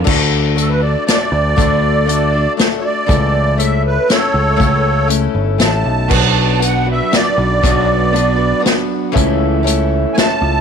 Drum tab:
CC |x-----|------|------|------|
HH |--x-x-|x-x-x-|x-x-x-|x-x-x-|
SD |----o-|----o-|----o-|----o-|
BD |o-----|o-----|o-----|o-----|

CC |x-----|------|------|
HH |--x-x-|x-x-x-|x-x-x-|
SD |----o-|----o-|----o-|
BD |o-----|o-----|o-----|